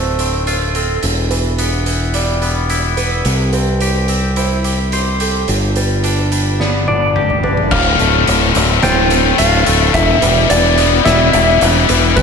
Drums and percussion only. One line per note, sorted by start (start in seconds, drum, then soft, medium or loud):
0.19 closed hi-hat soft
0.47 closed hi-hat medium
0.75 closed hi-hat soft
1.03 closed hi-hat medium
1.31 closed hi-hat soft
1.58 closed hi-hat medium
1.86 closed hi-hat soft
2.14 closed hi-hat medium
2.42 closed hi-hat soft
2.70 closed hi-hat medium
2.97 closed hi-hat soft
3.25 closed hi-hat medium
3.53 closed hi-hat soft
3.81 closed hi-hat medium
4.08 closed hi-hat soft
4.36 closed hi-hat medium
4.64 closed hi-hat soft
4.92 closed hi-hat medium
5.20 closed hi-hat soft
5.48 closed hi-hat medium
5.76 closed hi-hat soft
6.04 closed hi-hat medium
6.32 closed hi-hat soft
6.60 snare soft
6.88 high tom soft
7.16 mid tom medium
7.30 mid tom soft
7.44 floor tom medium
7.57 floor tom medium
7.71 kick loud
7.71 crash loud
7.99 closed hi-hat soft
8.27 closed hi-hat medium
8.55 closed hi-hat medium
8.83 snare medium
8.83 closed hi-hat medium
9.10 closed hi-hat medium
9.38 closed hi-hat medium
9.66 closed hi-hat medium
9.94 kick medium
9.94 closed hi-hat medium
10.22 closed hi-hat medium
10.50 closed hi-hat medium
10.78 closed hi-hat medium
11.05 snare medium
11.05 closed hi-hat medium
11.33 closed hi-hat medium
11.61 closed hi-hat medium
11.89 closed hi-hat medium
12.17 kick loud
12.17 closed hi-hat medium